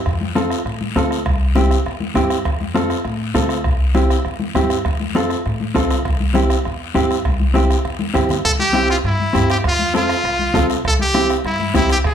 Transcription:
0.06 F2, bombo low, bombo rim, high conga, long guiro
0.21 high conga
0.35 C4 F4 A4, bombo rim, high conga, short guiro
0.50 bombo rim, short guiro
0.65 A2, bombo rim, high conga, long guiro
0.81 high conga
0.96 D2 C4 F4 A4, bombo low, bombo rim, high conga, short guiro
1.11 bombo rim, short guiro
1.26 C2, bombo low, bombo rim, high conga, long guiro
1.55 C4 E4 G4, bombo rim, high conga, short guiro
1.71 bombo rim, short guiro
1.86 E2, bombo rim, high conga, long guiro
2.00 high conga
2.15 G2 C4 E4 G4, bombo low, bombo rim, high conga, short guiro
2.30 bombo rim, short guiro
2.45 F2, bombo low, bombo rim, high conga, long guiro
2.61 high conga
2.74 C4 F4 A4, bombo rim, high conga, short guiro
2.90 bombo rim, short guiro
3.05 A2, bombo rim, high conga, long guiro
3.34 D2 C4 F4 A4, bombo low, bombo rim, high conga, short guiro
3.49 bombo rim, short guiro
3.64 C2, bombo low, bombo rim, high conga, long guiro
3.95 C4 E4 G4, bombo rim, high conga, short guiro
4.10 bombo rim, short guiro
4.25 E2, bombo rim, high conga, long guiro
4.40 high conga
4.54 G2 C4 E4 G4, bombo low, bombo rim, high conga, short guiro
4.70 bombo rim, short guiro
4.85 F2, bombo low, bombo rim, high conga, long guiro
5.00 high conga
5.15 C4 F4 A4, bombo rim, high conga, short guiro
5.30 bombo rim, short guiro
5.46 A2, bombo rim, high conga, long guiro
5.60 high conga
5.75 C2 C4 F4 A4, bombo low, bombo rim, high conga, short guiro
5.91 bombo rim, short guiro
6.05 C2, bombo low, bombo rim, high conga, long guiro
6.20 high conga
6.34 C4 E4 G4, bombo rim, high conga, short guiro
6.50 bombo rim, short guiro
6.65 E2, bombo rim, high conga, long guiro
6.94 G2 C4 E4 G4, bombo low, bombo rim, high conga, short guiro
7.11 bombo rim, short guiro
7.25 C2, bombo low, bombo rim, high conga, long guiro
7.40 high conga
7.54 C4 E4 G4, bombo rim, high conga, short guiro
7.70 bombo rim, short guiro
7.85 E2, bombo rim, high conga, long guiro
7.99 high conga
8.14 G2 C4 E4 G4, bombo low, bombo rim, low conga, short guiro
8.29 bombo rim, low conga, short guiro
8.45 C2 A4, bombo low, bombo rim, long guiro
8.59 G4, high conga
8.73 C4 E4 G4, bombo rim, high conga, short guiro
8.90 F4, bombo rim, short guiro
9.04 G2 E4, bombo rim, high conga, long guiro
9.19 high conga
9.33 G2 C4 E4 G4, bombo low, bombo rim, high conga, short guiro
9.50 G4, bombo rim, short guiro
9.64 F2 F4, bombo low, bombo rim, high conga, long guiro
9.79 high conga
9.94 C4 F4 A4, bombo rim, high conga, short guiro
10.09 bombo rim, short guiro
10.24 C2, bombo rim, high conga, long guiro
10.39 high conga
10.54 C2 C4 F4 A4, bombo low, bombo rim, high conga, low conga, short guiro
10.70 bombo rim, short guiro
10.84 C2 A4, bombo low, bombo rim, high conga, long guiro
10.99 G4, high conga
11.14 C4 E4 G4, bombo rim, high conga, short guiro
11.30 bombo rim, short guiro
11.45 G2 E4, bombo rim, high conga, long guiro
11.60 high conga
11.74 C2 C4 E4 G4, bombo low, bombo rim, high conga, short guiro
11.90 G4, bombo rim, short guiro
12.04 F2 A4, bombo low, bombo rim, high conga, long guiro

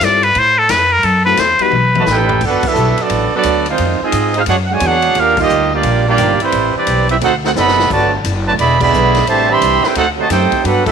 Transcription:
Already playing: G3 C4 E4 F4 A4
0.01 G2 D5, kick, snare, hi-hat pedal, ride
0.23 B4, ride
0.35 A2 C5, kick, ride
0.58 A4
0.69 F2 B4, kick, snare, hi-hat pedal, ride
0.93 A#4
1.03 F#2 A4, kick, ride
1.25 A3 C4 E4 F#4 A4 B4
1.37 E2 C5, kick, snare, hi-hat pedal, ride
1.59 G3 B3 D#4 F#4 B4, muted upright bass stroke, ride
1.71 B1, high tom
1.95 D#3 A3 A5, high tom
1.99 F#3 F#4 B4 D#5
2.06 A1 A3 D#4 G4 B4 G5, snare, hi-hat pedal
2.10 A4
2.29 floor tom
2.41 G1 D4 F#4, kick, crash
2.45 B3 A4 B4 F#5
2.63 F#3 B3 D4 E4 E5, kick, crash
2.67 A4 B4
2.74 B1 G3 B3 F#4 A4, hi-hat pedal
2.98 F#3 B3 D4 F#4 A4 D5, muted upright bass stroke, ride
3.10 A1, kick, ride
3.33 F#3 B3 D4 F#4 A4 D5, muted upright bass stroke
3.43 D2, kick, hi-hat pedal, ride
3.66 D#3 G#3 C4 D#4 F4 C5, ride
3.70 G#3
3.78 F2, kick, ride
4.01 G#3 C4 D#4 F4 G#4 D#5, muted upright bass stroke
4.12 G#2, kick, hi-hat pedal, ride
4.34 G#3 C4 D#4 F4 G#4 C5 F5, ride
4.46 F#2 G#3 D4 F#4 G#4 C#5 F#5, kick, ride
4.66 G#2 D3 G#3 F#5
4.73 F#4 C#5 D5 G#5
4.80 E2 F#3 G#3 A#3 D4 F#4 G#4, kick, hi-hat pedal, ride
4.87 D4 G#4 C#5 F#5
5.02 ride
5.15 D#2 A#3 D4 F4 G4 A#4 F5, kick, ride
5.19 D4
5.37 G3 A#3 D#4 F4 G4 D#5, kick, crash
5.49 D2, hi-hat pedal
5.71 G3 A#3 D4 F4 G4 D5
5.83 A#1, kick, ride
6.06 G3 A#3 D4 F4 G4 D5
6.17 G1 F3 D4 D#4 G4, kick, hi-hat pedal, ride
6.40 E3 G3 C4 E4 B4 C5, muted upright bass stroke, ride
6.52 A1, kick, ride
6.74 E3 G3 C4 D4 G4 B4 D5, muted upright bass stroke
6.87 B1, kick, hi-hat pedal, ride
7.09 G3 C4 E4 G4 B4 E5, ride
7.21 D2 A3 C4 D#4 F#4 A4 C5 F#5, kick, ride
7.44 A3 C4 D#4 F#4 A4 C5 F#5, snare
7.55 F#1 C3 F#3 B3 D4 D#4 A4 C5 D#5 F#5 B5, snare, hi-hat pedal
7.68 snare
7.80 snare
7.90 G1 D3 F#3 G3 A3 B3 F#4 A4 B4 D5 A5, kick, crash
8.24 F#1, kick, hi-hat pedal, ride
8.47 D3 F#3 A3 F#4 B4 D5 A5
8.58 E1 D3 G#3 B3 G#4 D5 E5 B5, kick, ride
8.80 D3 G#3 B3 G#4 D5 E5 B5, kick, crash
8.93 B1 G#3 D4 E4 B4, hi-hat pedal
9.15 snare, ride
9.27 A1 C3 E3 G3 A3 C4 D4 G4 C5 E5 A5, kick, ride
9.50 E3 G3 C4 G4 E5 B5 C6
9.61 C2, kick, hi-hat pedal, ride
9.83 C4 E4 G4 B4 C5 G5, muted upright bass stroke, snare
9.95 D2 A3 C4 D#4 F#4 A4 C5 F#5, kick, ride
10.17 C3 F#3 A3 F#4 C5 D#5 A5
10.28 F#2 A3 C4 D#4 G4 A4 C5 G5, kick, snare, hi-hat pedal, ride
10.52 muted upright bass stroke, kick, ride
10.63 G2 F#3 B3 D4 F#4 A4 B4 F#5, kick, ride
10.86 F#3 B3 D4 E4 A4 B4 E5, kick, crash

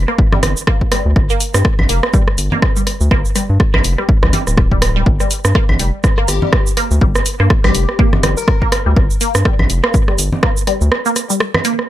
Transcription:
0.08 A#3, cross-stick
0.18 kick
0.32 G3, cross-stick, low conga
0.43 G1, cross-stick, open hi-hat, low conga
0.57 cabasa
0.67 A#3, kick, cross-stick
0.81 kick
0.92 G3, cross-stick, open hi-hat
1.06 D2
1.16 G1, kick, cross-stick
1.30 A#3, cabasa
1.40 open hi-hat, cabasa
1.54 G2 G3, cross-stick, cabasa
1.65 kick, cross-stick
1.79 A#1, cross-stick, low conga, claves
1.89 F1 A#3, open hi-hat, cabasa
2.03 cross-stick
2.14 G3, kick, cabasa
2.28 cross-stick
2.38 G1, open hi-hat, cabasa
2.52 A#3, low conga
2.62 kick, cross-stick
2.76 G3, cabasa
2.87 cross-stick, open hi-hat
3.01 D2, cabasa
3.11 G1 A#3, kick, cross-stick
3.25 cabasa
3.35 G3, cross-stick, open hi-hat, cabasa
3.50 G2
3.60 kick, cross-stick
3.74 A#1 A#3, cross-stick, low conga, claves
3.84 F1, open hi-hat, cabasa
3.98 G3, cross-stick
4.09 kick
4.23 C2, cross-stick, low conga
4.33 G3, open hi-hat, low conga
4.47 D1, cross-stick, cabasa
4.57 kick, cross-stick
4.71 G3, kick
4.82 cross-stick, open hi-hat
4.96 G3
5.06 G1, kick
5.20 G3, cross-stick, cabasa
5.31 open hi-hat, cabasa
5.45 G2, cross-stick, cabasa
5.55 A#3, kick, cross-stick
5.69 A#1, cross-stick, low conga, claves
5.79 F1 G3, open hi-hat, cabasa
6.04 kick, cross-stick, cabasa
6.18 A#3, cross-stick
6.28 G1 G4, cross-stick, open hi-hat, cabasa
6.42 G3, low conga
6.53 kick, cross-stick
6.67 cabasa
6.77 A#3, cross-stick, open hi-hat
6.91 D2, cabasa
7.01 G1 G3, kick
7.15 cross-stick, cabasa
7.26 open hi-hat, cabasa
7.40 G2 A#3, cross-stick
7.50 kick, cross-stick
7.64 A#1 G3 G4, cross-stick, low conga, claves
7.75 F1, open hi-hat, cabasa
7.89 cross-stick
7.99 A#3, kick
8.13 cross-stick, low conga
8.23 G1 G3, cross-stick, open hi-hat, low conga
8.37 A#4, cabasa
8.48 kick, cross-stick
8.62 A#3, kick
8.72 cross-stick, open hi-hat
8.86 D2 G3
8.96 G1, kick, cross-stick
9.10 cabasa
9.21 A#3, open hi-hat, cabasa
9.35 G2, cross-stick, cabasa
9.45 G3, kick, cross-stick
9.59 A#1, cross-stick, low conga, claves
9.70 F1, open hi-hat, cabasa
9.84 A#3, cross-stick
9.94 kick, cabasa
10.08 G3, cross-stick
10.19 G1, open hi-hat, cabasa
10.32 low conga
10.43 A#3, kick, cross-stick
10.57 cabasa
10.67 G3, cross-stick, open hi-hat
10.81 D2, cabasa
10.92 cross-stick
11.06 A#3, cabasa
11.16 cross-stick, open hi-hat, cabasa
11.30 G3, cabasa
11.40 cross-stick
11.54 cross-stick, low conga, claves
11.65 A#3, open hi-hat, cabasa
11.79 cross-stick

